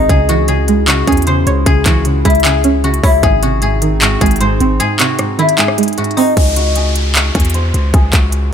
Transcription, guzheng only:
Already playing: D#4 F#4 C5
0.10 G#4
0.29 F#4
0.48 G#4
0.88 F#4
1.08 G#4
1.27 C5
1.66 G#4
1.86 F#4
2.25 E4
2.45 G#4
2.84 F#4
3.04 E4
3.23 G#4
3.43 F#4
3.62 G#4
4.02 F#4
4.21 G#4
4.41 C5
4.80 G#4
5.00 F#4
5.39 E4
5.59 G#4
5.98 F#4
6.17 D#4
6.37 G#4
6.57 F#4
6.76 G#4
7.16 F#4
7.35 G#4
7.55 C5
7.94 G#4
8.13 F#4

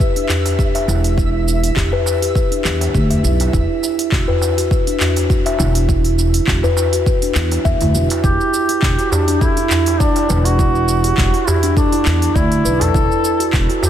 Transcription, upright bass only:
0.88 E1
1.77 E1
2.65 E2
2.95 D2
3.24 B1
3.53 E1
4.12 E1
5.60 E1
6.48 E1
7.36 E2
7.65 E2
7.81 D2
7.95 E1
8.24 E1
8.82 E1
10.30 E1
11.18 E1
12.06 E2
12.35 D2
12.65 B1
12.95 E1
13.53 E1

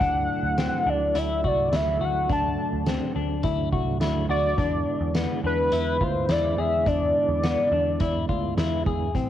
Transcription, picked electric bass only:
0.01 D2
0.43 D2
0.86 D2
1.15 D2
1.44 C2
1.73 D2
2.01 D2
2.29 D2
2.73 D2
3.16 D2
3.44 D2
3.73 C2
4.00 D2
4.29 D2
4.58 E2
5.01 E2
5.44 E2
5.72 E2
6.01 D2
6.29 E2
6.58 E2
6.86 E2
7.29 E2
7.71 E2
8.01 E2
8.29 D2
8.57 E2
8.86 E2
9.15 A1

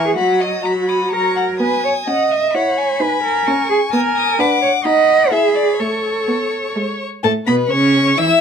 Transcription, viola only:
Already playing: E3
0.19 F#3
0.66 F#3
1.13 F#3
1.60 B3
2.08 C#4
2.55 E4
3.00 D#4
3.47 C#4
3.93 B3
4.39 D4
4.85 D#4
5.32 E4
5.80 A3
6.28 B3
6.76 G#3
7.24 A3
7.47 B3
7.71 C#4
8.18 E4

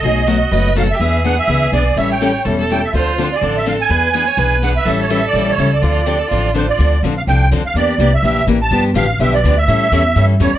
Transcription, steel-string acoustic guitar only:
0.03 B2 F#3 A3 D#4 F#4
0.27 B2 F#3 A3 D#4 F#4
0.51 B2 F#3 A3 D#4 F#4
0.75 B2 F#3 A3 D#4 F#4
1.00 E3 B3 D4 G#4
1.24 E3 B3 D4 G#4
1.49 E3 B3 D4 G#4
1.73 E3 B3 D4 G#4
1.97 E3 G3 C#4 E4 A4
2.21 E3 G3 C#4 E4 A4
2.46 E3 G3 C#4 E4 A4
2.70 E3 G3 C#4 E4 A4
2.94 D3 F3 C4 D4 A4
3.18 D3 F3 C4 D4 A4
3.42 D3 F3 C4 D4 A4
3.66 D3 F3 C4 D4 A4
3.90 E3 B3 D4 G#4
4.14 E3 B3 D4 G#4
4.38 E3 B3 D4 G#4
4.62 E3 B3 D4 G#4
4.87 E3 G3 C#4 E4 A4
5.10 E3 G3 C#4 E4 A4
5.35 E3 G3 C#4 E4 A4
5.58 E3 G3 C#4 E4 A4
5.83 D3 F3 C4 D4 A4
6.06 D3 F3 C4 D4 A4
6.31 D3 F3 C4 D4 A4
6.55 D3 F3 C4 D4 A4
6.79 D3 F3 C4 D4 A4
7.04 D3 F3 C4 D4 A4
7.28 D3 F3 C4 D4 A4
7.52 D3 F3 C4 D4 A4
7.76 E3 A#3 D4 G4
7.99 E3 A#3 D4 G4
8.24 E3 A#3 D4 G4
8.48 E3 A#3 D4 G4
8.71 D3 F3 B3 D4 G4
8.95 D3 F3 B3 D4 G4
9.20 D3 F3 B3 D4 G4
9.45 D3 F3 B3 D4 G4
9.68 E3 G3 C#4 E4 A4
9.92 E3 G3 C#4 E4 A4
10.16 E3 G3 C#4 E4 A4
10.40 E3 G3 C#4 E4 A4

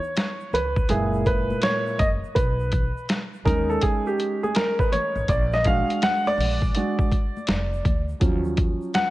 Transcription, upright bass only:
0.53 C#2
0.89 F#1
1.99 F#1
2.36 B1
3.45 D#2
5.15 A1
5.29 A#1
6.38 A#1
7.48 F1
7.85 D2
8.21 D#2

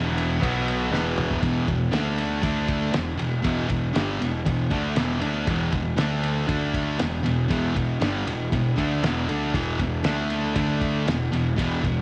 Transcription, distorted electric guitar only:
Already playing: E2 B2 E3
0.40 B2 F#3 B3
0.90 E2 B2 E3
1.41 E2 B2 E3
1.68 E2 B2
1.91 D3 A3 D4
2.42 D3 A3 D4
2.92 E2 B2
3.17 E2 B2
3.42 E2 B2 E3
3.69 E2 B2
3.93 G2 D3 G3
4.19 E2 B2
4.45 E2 B2
4.70 D3 A3 D4
4.96 E2 B2 E3
5.20 D3 A3 D4
5.47 E2 B2 E3
5.72 E2 B2
5.97 D3 A3 D4
6.47 D3 A3 D4
6.99 E2 B2
7.23 E2 B2
7.48 E2 B2 E3
7.74 E2 B2
8.00 G2 D3 G3
8.28 E2 B2
8.52 E2 B2
8.76 D3 A3 D4
9.03 E2 B2 E3
9.27 D3 A3 D4
9.53 E2 B2 E3
9.80 E2 B2
10.04 D3 A3 D4
10.55 D3 A3 D4
11.07 E2 B2
11.32 E2 B2
11.56 E2 B2 E3
11.82 E2 B2

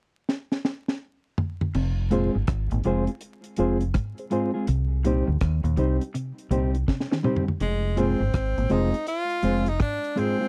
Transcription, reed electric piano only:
2.12 F4 G#4 C5
2.86 F4 G#4 C5
3.58 F4 G#4 C5
4.19 G#4 C5
4.32 F4 G#4 C5
5.05 D#4 G4 C5
5.78 D#4 G4 C5
6.51 D#4 G4 C5
7.11 G4 C5
7.24 D#4 G4 C5
7.97 F4 G#4 C5
8.70 F4 G#4 C5
9.43 F4 G#4 C5
10.16 F4 G#4 C5

